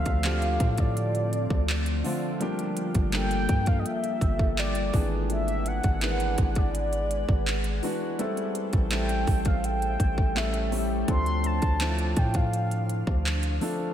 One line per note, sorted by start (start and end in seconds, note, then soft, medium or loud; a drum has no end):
0.00 0.24 D3 medium
0.00 2.38 D3 medium
0.00 0.24 F3 medium
0.00 0.25 A3 medium
0.00 2.38 A3 medium
0.00 0.25 C4 medium
0.00 2.38 C4 medium
0.00 2.06 F4 medium
0.00 4.90 F4 medium
0.00 2.38 D5 medium
0.00 0.81 F5 loud
0.06 0.58 D2 loud
0.06 kick medium
0.06 closed hi-hat medium
0.23 1.11 D3 medium
0.23 1.11 F3 medium
0.23 1.11 A3 medium
0.23 1.12 C4 medium
0.23 1.12 G4 medium
0.23 clap loud
0.23 closed hi-hat medium
0.42 closed hi-hat soft
0.60 1.47 A2 loud
0.60 kick loud
0.60 closed hi-hat medium
0.78 2.05 D5 medium
0.78 kick loud
0.78 closed hi-hat medium
0.97 closed hi-hat medium
1.15 closed hi-hat medium
1.33 closed hi-hat medium
1.50 2.03 D2 loud
1.50 kick loud
1.70 clap loud
1.86 closed hi-hat soft
2.04 2.26 D3 medium
2.04 2.26 F3 medium
2.04 2.27 A3 medium
2.04 2.27 C4 medium
2.04 2.27 F4 medium
2.04 open hi-hat medium
2.40 2.84 F3 medium
2.40 2.84 G3 medium
2.40 4.91 G3 medium
2.40 4.91 A#3 medium
2.40 2.84 A#3 medium
2.40 2.85 D4 medium
2.40 2.85 G4 loud
2.40 4.91 A4 medium
2.40 4.91 G5 medium
2.40 closed hi-hat medium
2.59 closed hi-hat soft
2.77 closed hi-hat medium
2.95 3.47 G1 loud
2.95 kick medium
2.95 closed hi-hat medium
3.12 4.00 F3 medium
3.12 4.00 G3 medium
3.12 4.00 A#3 medium
3.12 4.01 D4 medium
3.12 4.01 A4 medium
3.12 3.69 G5 loud
3.12 clap loud
3.12 closed hi-hat medium
3.31 closed hi-hat soft
3.49 3.84 G2 loud
3.49 kick loud
3.49 closed hi-hat medium
3.66 3.81 F5 loud
3.66 kick loud
3.66 closed hi-hat medium
3.79 3.88 D#5 medium
3.86 4.58 E5 loud
3.86 closed hi-hat medium
4.04 closed hi-hat medium
4.21 4.91 G1 loud
4.21 kick medium
4.21 closed hi-hat medium
4.39 kick loud
4.58 5.09 D5 loud
4.58 clap loud
4.75 closed hi-hat medium
4.93 5.81 G#1 loud
4.93 5.80 E3 medium
4.93 8.16 G#3 medium
4.93 5.80 G#3 medium
4.93 5.81 B3 medium
4.93 5.81 D4 medium
4.93 8.16 G#4 medium
4.93 5.81 G#4 medium
4.93 8.15 B4 medium
4.93 8.16 D5 medium
4.93 8.16 F#5 medium
4.93 kick loud
4.93 open hi-hat medium
5.30 5.69 E5 loud
5.30 closed hi-hat medium
5.48 closed hi-hat soft
5.66 6.59 F#5 loud
5.66 closed hi-hat medium
5.83 6.36 G#1 loud
5.83 kick medium
5.83 closed hi-hat medium
6.01 6.89 E3 medium
6.01 6.89 G#3 medium
6.01 6.90 B3 medium
6.01 6.90 D4 medium
6.01 6.09 A#4 medium
6.01 clap loud
6.01 closed hi-hat medium
6.10 6.93 B4 medium
6.20 closed hi-hat soft
6.38 7.25 G#1 loud
6.38 kick loud
6.38 closed hi-hat medium
6.55 7.84 D5 medium
6.55 kick loud
6.55 closed hi-hat medium
6.75 closed hi-hat medium
6.93 closed hi-hat medium
7.11 closed hi-hat medium
7.29 7.81 G#1 loud
7.29 kick loud
7.48 clap loud
7.64 closed hi-hat medium
7.83 8.05 E3 medium
7.83 8.05 G#3 medium
7.83 8.05 B3 medium
7.83 8.05 D4 medium
7.83 8.05 F#4 medium
7.83 open hi-hat medium
8.18 8.62 G3 medium
8.18 8.63 A3 medium
8.18 11.05 A3 medium
8.18 8.63 C4 medium
8.18 8.63 E4 medium
8.18 10.34 A4 medium
8.18 8.63 A4 loud
8.18 10.34 C5 medium
8.18 10.34 E5 medium
8.18 10.34 G5 medium
8.18 closed hi-hat medium
8.37 closed hi-hat soft
8.55 closed hi-hat medium
8.73 9.25 A1 loud
8.73 kick medium
8.73 closed hi-hat medium
8.91 9.78 G3 medium
8.91 9.78 A3 medium
8.91 9.79 C4 medium
8.91 9.79 E4 medium
8.91 9.79 A4 medium
8.91 9.49 G5 medium
8.91 clap loud
8.91 closed hi-hat medium
9.09 closed hi-hat soft
9.27 9.97 A1 loud
9.27 kick loud
9.27 open hi-hat medium
9.45 9.66 F5 medium
9.45 kick loud
9.45 closed hi-hat medium
9.64 10.39 G5 loud
9.64 closed hi-hat medium
9.82 closed hi-hat medium
10.00 11.04 A1 loud
10.00 kick medium
10.00 closed hi-hat medium
10.18 kick loud
10.35 10.64 G3 medium
10.35 10.65 A3 medium
10.35 10.65 C#4 medium
10.35 10.65 E4 medium
10.35 11.07 A4 medium
10.35 10.65 A4 medium
10.35 11.07 C#5 medium
10.35 10.91 E5 loud
10.35 11.07 G5 medium
10.35 clap loud
10.54 closed hi-hat medium
10.71 10.93 G3 medium
10.71 10.94 A3 medium
10.71 10.94 C#4 medium
10.71 10.94 E4 medium
10.71 10.95 G4 medium
10.71 open hi-hat medium
11.08 11.60 D2 loud
11.08 13.94 D3 medium
11.08 11.52 F3 medium
11.08 11.52 A3 medium
11.08 11.52 C4 medium
11.08 13.94 D4 medium
11.08 11.52 D4 medium
11.08 11.52 A4 medium
11.08 13.94 C5 medium
11.08 13.94 F5 medium
11.08 11.48 C6 loud
11.08 kick loud
11.08 closed hi-hat medium
11.26 closed hi-hat soft
11.44 12.20 A5 loud
11.44 closed hi-hat medium
11.62 12.15 D2 loud
11.62 kick medium
11.62 closed hi-hat medium
11.80 12.67 F3 medium
11.80 12.68 A3 medium
11.80 12.68 C4 medium
11.80 12.68 D4 medium
11.80 11.88 E4 medium
11.80 clap loud
11.80 closed hi-hat medium
11.89 12.72 F4 medium
11.98 closed hi-hat soft
12.16 13.04 A2 loud
12.16 12.37 G5 medium
12.16 kick loud
12.16 closed hi-hat medium
12.34 13.08 F5 medium
12.34 kick loud
12.34 closed hi-hat medium
12.53 closed hi-hat medium
12.71 closed hi-hat medium
12.89 closed hi-hat medium
13.07 13.59 D2 loud
13.07 kick medium
13.26 clap loud
13.43 closed hi-hat medium
13.61 13.83 F3 medium
13.61 13.83 A3 medium
13.61 13.83 C4 medium
13.61 13.84 D4 medium
13.61 13.84 A4 medium
13.61 open hi-hat medium